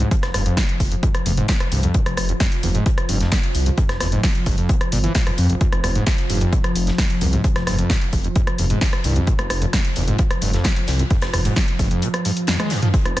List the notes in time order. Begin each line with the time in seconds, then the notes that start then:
Already playing: F3
0.00 G#2, closed hi-hat
0.11 F3, kick, closed hi-hat
0.22 F1, cross-stick, snare, closed hi-hat
0.34 F1 G2, cross-stick, snare, closed hi-hat, open hi-hat
0.46 F2, closed hi-hat
0.57 C3, kick, snare, closed hi-hat
0.69 closed hi-hat
0.80 F1, kick, closed hi-hat, open hi-hat
0.92 F2, closed hi-hat
1.03 F2, kick, closed hi-hat
1.15 cross-stick, closed hi-hat
1.26 F1 E2, closed hi-hat, open hi-hat
1.37 G#2, closed hi-hat
1.48 F3, kick, snare, closed hi-hat
1.60 cross-stick, closed hi-hat
1.72 C2 G2, closed hi-hat, open hi-hat
1.83 F2, closed hi-hat
1.94 C3, kick, closed hi-hat
2.06 F1, cross-stick, closed hi-hat
2.17 F1, cross-stick, closed hi-hat, open hi-hat
2.29 F2, closed hi-hat
2.40 F2, kick, snare, closed hi-hat
2.52 closed hi-hat
2.63 F1 E2, closed hi-hat, open hi-hat
2.75 G#2, closed hi-hat
2.86 F3, kick, closed hi-hat
2.98 cross-stick, closed hi-hat
3.09 F1 G2, closed hi-hat, open hi-hat
3.21 F2, snare, closed hi-hat
3.32 C3, kick, snare, closed hi-hat
3.43 closed hi-hat
3.55 C2, closed hi-hat, open hi-hat
3.66 F2, closed hi-hat
3.78 F2, kick, closed hi-hat
3.89 F1, cross-stick, snare, closed hi-hat
4.00 F1 E2, cross-stick, snare, closed hi-hat, open hi-hat
4.12 G#2, closed hi-hat
4.23 F3, kick, snare, closed hi-hat
4.35 closed hi-hat
4.46 F1 G2, kick, closed hi-hat, open hi-hat
4.58 F2, closed hi-hat
4.69 C3, kick, closed hi-hat
4.81 cross-stick, closed hi-hat
4.92 G1 A#2, closed hi-hat, open hi-hat
5.04 E3, closed hi-hat
5.15 A#2, kick, snare, closed hi-hat
5.27 F2, cross-stick, closed hi-hat
5.38 F2, closed hi-hat, open hi-hat
5.50 F1, closed hi-hat
5.61 F2, kick, closed hi-hat
5.72 F1, cross-stick, closed hi-hat
5.84 F1 E2, cross-stick, closed hi-hat, open hi-hat
5.95 G#2, closed hi-hat
6.06 F3, kick, snare, closed hi-hat
6.18 closed hi-hat
6.29 F1 G2, closed hi-hat, open hi-hat
6.41 F2, closed hi-hat
6.52 C3, kick, closed hi-hat
6.64 cross-stick, closed hi-hat
6.75 F1, closed hi-hat, open hi-hat
6.87 F2, snare, closed hi-hat
6.98 F2, kick, snare, closed hi-hat
7.10 closed hi-hat
7.21 C2 E2, closed hi-hat, open hi-hat
7.33 G#2, closed hi-hat
7.44 F3, kick, closed hi-hat
7.56 F1, cross-stick, snare, closed hi-hat
7.67 F1 G2, cross-stick, snare, closed hi-hat, open hi-hat
7.79 F2, closed hi-hat
7.90 C3, kick, snare, closed hi-hat
8.01 closed hi-hat
8.13 F1, kick, closed hi-hat, open hi-hat
8.24 F2, closed hi-hat
8.36 F2, kick, closed hi-hat
8.47 cross-stick, closed hi-hat
8.58 F1 E2, closed hi-hat, open hi-hat
8.70 G#2, closed hi-hat
8.81 F3, kick, snare, closed hi-hat
8.93 cross-stick, closed hi-hat
9.04 C2 G2, closed hi-hat, open hi-hat
9.16 F2, closed hi-hat
9.27 C3, kick, closed hi-hat
9.39 F1, cross-stick, closed hi-hat
9.50 F1, cross-stick, closed hi-hat, open hi-hat
9.62 F2, closed hi-hat
9.73 F2, kick, snare, closed hi-hat
9.84 closed hi-hat
9.96 F1 E2, closed hi-hat, open hi-hat
10.08 G#2, closed hi-hat
10.19 F3, kick, closed hi-hat
10.31 cross-stick, closed hi-hat
10.42 F1 G2, closed hi-hat, open hi-hat
10.53 F2, snare, closed hi-hat
10.64 C3, kick, snare, closed hi-hat
10.76 closed hi-hat
10.87 C2, snare, closed hi-hat, open hi-hat
10.99 F2, closed hi-hat
11.10 F2, kick, closed hi-hat
11.22 F1, cross-stick, snare, closed hi-hat
11.33 F1 E2, cross-stick, open hi-hat
11.45 G#2, closed hi-hat
11.56 F3, kick, snare, closed hi-hat
11.68 closed hi-hat
11.79 F1 G2, kick, closed hi-hat, open hi-hat
11.91 F2, closed hi-hat
12.02 C3, closed hi-hat
12.14 cross-stick, closed hi-hat
12.25 G2, closed hi-hat, open hi-hat
12.37 closed hi-hat
12.47 F2, snare, closed hi-hat, high tom
12.60 G#3, cross-stick, closed hi-hat, high tom
12.70 F2, snare, closed hi-hat, open hi-hat
12.82 F3, closed hi-hat, mid tom
12.94 F2 F3, kick, closed hi-hat
13.05 F1, cross-stick, closed hi-hat
13.17 F1 E2, cross-stick, closed hi-hat, open hi-hat